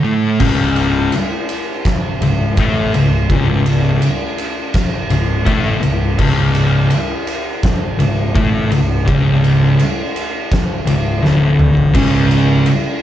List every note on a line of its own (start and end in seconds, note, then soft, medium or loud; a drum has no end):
0.03 0.38 A2 medium
0.03 0.39 A3 loud
0.40 1.08 C#1 loud
0.40 1.11 C#2 medium
0.40 1.11 C#3 loud
0.40 kick loud
0.40 crash loud
0.76 ride medium
1.12 ride loud
1.49 ride medium
1.85 kick loud
1.85 snare loud
1.85 ride loud
2.21 2.54 C#1 medium
2.21 2.51 C#2 medium
2.21 ride medium
2.57 2.91 A1 medium
2.57 2.93 A2 medium
2.57 2.93 A3 loud
2.57 kick loud
2.57 ride loud
2.94 3.27 C#1 medium
2.94 3.23 C#2 medium
2.94 ride medium
3.30 3.98 C#1 medium
3.30 4.01 C#2 loud
3.30 4.01 C#3 loud
3.30 kick loud
3.30 ride loud
3.66 ride medium
4.02 ride loud
4.38 ride medium
4.74 kick loud
4.74 snare loud
4.74 ride loud
5.10 5.44 C#1 medium
5.10 5.39 C#2 medium
5.10 ride medium
5.45 5.80 A1 loud
5.45 5.81 A2 medium
5.45 5.81 A3 loud
5.45 kick loud
5.45 ride loud
5.82 6.16 C#1 medium
5.82 6.11 C#2 medium
5.82 ride medium
6.18 6.87 C#1 medium
6.18 6.89 C#2 loud
6.18 6.90 C#3 loud
6.18 kick loud
6.18 crash loud
6.55 ride medium
6.90 ride loud
7.27 ride medium
7.63 kick loud
7.63 snare loud
7.63 ride loud
7.98 8.33 C#1 medium
7.98 8.27 C#2 medium
7.98 ride medium
8.34 8.69 A1 loud
8.34 8.70 A2 loud
8.34 8.70 A3 loud
8.34 kick loud
8.34 ride medium
8.70 9.05 C#1 medium
8.70 8.99 C#2 medium
8.70 ride medium
9.06 9.75 C#1 loud
9.06 9.77 C#2 loud
9.06 9.78 C#3 loud
9.06 kick loud
9.06 ride loud
9.44 ride medium
9.79 ride loud
10.16 ride medium
10.52 kick loud
10.52 snare loud
10.52 ride loud
10.87 11.21 C#1 medium
10.87 11.16 C#2 medium
10.87 ride medium
11.22 11.91 D1 loud
11.22 11.94 D2 medium
11.22 11.94 D3 loud
11.22 snare medium
11.59 mid tom loud
11.77 floor tom medium
11.94 12.63 C#1 medium
11.94 12.65 C#2 loud
11.94 12.66 C#3 loud
11.94 kick loud
11.94 ride loud
11.94 crash loud
12.31 ride medium
12.66 ride loud